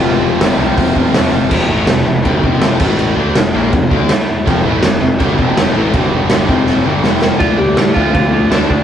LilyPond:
<<
  \new Staff \with { instrumentName = "Lead electric guitar" } { \time 4/4 \key f \major \tempo 4 = 163 <f f'>2. r4 | r1 | r1 | r1 |
r1 | <f f'>8 <g g'>4 <f f'>8 <f f'>8 <f f'>8 <d' d''>8 <d' d''>8 | }
  \new Staff \with { instrumentName = "Distorted electric guitar" } { \clef bass \time 4/4 \key f \major <f a c' f'>8 <f a c' f'>8 <f a c' f'>8 <f a c' f'>8 <f a c' f'>8 <f a c' f'>8 <f a c' f'>8 <f a c' f'>8 | r1 | r1 | <f, c f>8 <a, e a>8 <f, c>8 <f, c>8 <g, d g>8 <f, c f>4 <a, e a>8 |
<g, d g>4. <f, c f>4 <g, d g>8 <f, c f>4 | <d a d'>8 <d a>8 <d a>8 <d a d'>8 <d a>8 <d a>8 <d a d'>8 <d a>8 | }
  \new Staff \with { instrumentName = "Distorted electric guitar" } { \clef bass \time 4/4 \key f \major <f, c f>8 <f, c f>8 <f, c f>8 <f, c f>8 <f, c f>8 <f, c f>8 <f, c f>8 <f, c f>8 | <f, c f>8 <a, e a>8 <f, c>8 <f, c>8 <g, d g>8 <f, c f>4 <a, e a>8~ | <a, e a>8 <d a d'>8 <f, c>8 <bes, f bes>8 <f, c>8 <d a d'>8 r4 | <f, c f>8 <a, e a>8 <f, c>8 <f, c>8 <g, d g>8 <f, c f>4 <a, e a>8 |
<g, d g>4. <f, c f>4 <g, d g>8 <f, c f>4 | <d a d'>8 <d a>8 <d a>8 <d a d'>8 <d a>8 <d a>8 <d a d'>8 <d a>8 | }
  \new Staff \with { instrumentName = "Distorted electric guitar" } { \clef bass \time 4/4 \key f \major <f, c f>4. <f, c f>2 r8 | <f, c f>8 <a, e a>8 <f, c>8 <f, c>8 <g, d g>8 <f, c f>4 <a, e a>8~ | <a, e a>8 <d a d'>8 <f, c>8 <bes, f bes>8 <f, c>8 <d a d'>8 r4 | <f, c f>8 <a, e a>8 <f, c>8 <f, c>8 <g, d g>8 <f, c f>4 <a, e a>8 |
<g, d g>4. <f, c f>4 <g, d g>8 <f, c f>4 | <d a d'>8 <d a d'>8 <d a d'>8 <d a d'>8 <d a d'>8 <d a d'>8 <d a d'>8 <d a d'>8 | }
  \new Staff \with { instrumentName = "Picked electric bass" } { \clef bass \time 4/4 \key f \major f,,4 f,,8 c,8 f,,8 f,,8 f,8 f,,8 | f,,8 a,,8 f,,8 f,,8 g,,8 f,,4 a,,8~ | a,,8 d,8 f,,8 bes,,8 f,,8 d,8 r4 | f,,8 a,,8 f,,8 f,,8 g,,8 f,,4 a,,8 |
g,,4. f,,4 g,,8 f,,4 | d,8 d,8 a,8 d,8 d,4 d,8 d,8 | }
  \new DrumStaff \with { instrumentName = "Drums" } \drummode { \time 4/4 r4 <hho sn>4 <hho bd>8 bd8 <hho sn>4 | <cymc bd>4 <cymc sn>4 <cymc bd>8 bd8 <cymc sn>8 <cymc bd>8 | cymc4 <cymc sn>4 <cymc bd>8 bd8 <cymc sn>4 | <cymc bd>4 <cymc sn>4 <cymc bd>8 bd8 <cymc sn>4 |
<cymc bd>4 <cymc sn>8 bd8 sn4 sn8 sn8 | <cymc bd>4 <cymc sn>8 bd8 <cymc bd>4 <cymc sn>8 bd8 | }
>>